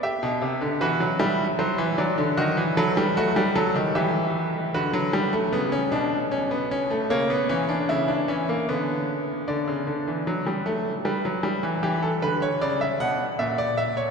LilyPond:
<<
  \new Staff \with { instrumentName = "Grand piano" } { \time 3/4 \key b \phrygian \tempo 4 = 76 << { e''4 b'4 c''8 d''8 | dis''8 b'4. e''4 | b'2. | cis''2. |
d''2 b'4 | g'16 a'16 b'16 cis''16 d''16 e''16 fis''8 e''16 d''16 e''16 cis''16 | } \\ { g'4 fis'8 e'4. | fis'8 a'8 fis'8 a'8 g'4 | fis'16 fis16 g16 a16 b16 cis'16 d'8 cis'16 b16 cis'16 a16 | ais16 b16 cis'16 d'16 e'16 d'16 cis'16 ais16 b4 |
r2. | r2. | } >> }
  \new Staff \with { instrumentName = "Grand piano" } { \clef bass \time 3/4 \key b \phrygian r16 b,16 c16 d16 e16 fis16 g8 fis16 e16 fis16 d16 | dis16 e16 fis16 g16 a16 g16 fis16 dis16 e4 | d4 cis8 b,4. | cis8 e8 cis8 e8 d4 |
d16 cis16 d16 e16 fis16 g16 a8 g16 fis16 g16 e16 | e8 d8 cis8 b,8 ais,4 | }
>>